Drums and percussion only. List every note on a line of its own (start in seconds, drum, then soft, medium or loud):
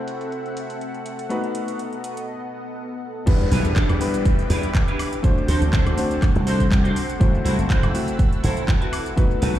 0.08 closed hi-hat medium
0.21 closed hi-hat soft
0.32 closed hi-hat soft
0.46 closed hi-hat soft
0.57 closed hi-hat medium
0.70 closed hi-hat soft
0.81 closed hi-hat soft
0.94 closed hi-hat soft
1.06 closed hi-hat medium
1.19 closed hi-hat soft
1.30 closed hi-hat soft
1.44 closed hi-hat soft
1.55 closed hi-hat medium
1.68 closed hi-hat soft
1.79 closed hi-hat soft
1.93 closed hi-hat soft
2.04 closed hi-hat medium
2.17 closed hi-hat soft
3.27 kick loud
3.27 closed hi-hat medium
3.27 crash loud
3.27 shaker soft
3.41 shaker soft
3.52 open hi-hat loud
3.52 shaker medium
3.65 closed hi-hat medium
3.65 shaker soft
3.76 kick loud
3.76 clap loud
3.76 closed hi-hat medium
3.76 shaker soft
3.89 closed hi-hat soft
3.89 high woodblock medium
3.89 shaker soft
4.01 open hi-hat medium
4.01 shaker medium
4.14 closed hi-hat medium
4.14 shaker soft
4.25 kick loud
4.25 closed hi-hat medium
4.25 shaker soft
4.39 closed hi-hat soft
4.39 shaker soft
4.50 open hi-hat loud
4.50 shaker medium
4.63 closed hi-hat medium
4.63 shaker soft
4.75 kick loud
4.75 clap loud
4.75 closed hi-hat medium
4.75 shaker soft
4.88 closed hi-hat soft
4.88 shaker soft
4.99 open hi-hat medium
4.99 high woodblock medium
4.99 shaker medium
5.13 closed hi-hat medium
5.13 shaker soft
5.24 kick loud
5.24 closed hi-hat medium
5.24 shaker soft
5.38 shaker soft
5.48 open hi-hat loud
5.48 shaker medium
5.62 closed hi-hat medium
5.62 shaker soft
5.73 kick loud
5.73 clap loud
5.73 closed hi-hat medium
5.73 shaker soft
5.86 closed hi-hat soft
5.86 high woodblock medium
5.86 shaker soft
5.98 open hi-hat loud
5.98 shaker medium
6.11 closed hi-hat medium
6.11 shaker soft
6.22 kick loud
6.22 clap medium
6.22 closed hi-hat medium
6.22 high woodblock medium
6.22 shaker soft
6.35 closed hi-hat soft
6.35 shaker soft
6.47 open hi-hat loud
6.47 shaker medium
6.60 kick medium
6.60 closed hi-hat medium
6.60 shaker soft
6.71 kick loud
6.71 clap loud
6.71 closed hi-hat medium
6.71 shaker soft
6.85 closed hi-hat soft
6.85 shaker soft
6.96 open hi-hat medium
6.96 shaker medium
7.10 closed hi-hat medium
7.10 shaker soft
7.21 kick loud
7.21 closed hi-hat medium
7.21 shaker soft
7.35 shaker soft
7.46 open hi-hat loud
7.46 shaker medium
7.59 closed hi-hat medium
7.59 shaker soft
7.70 kick loud
7.70 clap loud
7.70 closed hi-hat medium
7.70 shaker soft
7.83 closed hi-hat soft
7.83 high woodblock medium
7.83 shaker soft
7.95 open hi-hat loud
7.95 shaker medium
8.08 closed hi-hat medium
8.08 shaker soft
8.19 kick loud
8.19 closed hi-hat medium
8.19 shaker soft
8.33 closed hi-hat soft
8.33 shaker soft
8.44 open hi-hat loud
8.44 shaker medium
8.57 closed hi-hat medium
8.57 shaker soft
8.68 kick loud
8.68 clap loud
8.68 closed hi-hat medium
8.68 shaker soft
8.82 closed hi-hat soft
8.82 shaker soft
8.93 open hi-hat medium
8.93 high woodblock medium
8.93 shaker medium
9.06 closed hi-hat medium
9.06 shaker soft
9.17 kick loud
9.17 closed hi-hat medium
9.17 shaker soft
9.31 shaker soft
9.42 open hi-hat loud
9.42 shaker medium
9.55 closed hi-hat soft
9.55 shaker soft